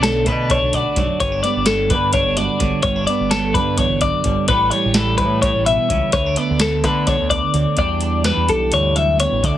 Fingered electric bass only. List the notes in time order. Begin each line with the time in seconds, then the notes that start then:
Already playing: B1
0.26 B2
0.62 B1
0.96 B1
1.20 G1
1.56 G1
1.90 G2
2.26 G1
2.61 G1
2.84 G1
3.20 G1
3.54 G2
3.89 G1
4.25 G1
4.49 A1
4.85 A1
5.19 A2
5.55 A1
5.90 C#2
6.13 D2
6.50 D2
6.84 D3
7.20 D2
7.54 D2
7.77 E2
8.37 E2
8.49 B1
8.72 D2
9.32 A1
9.44 D2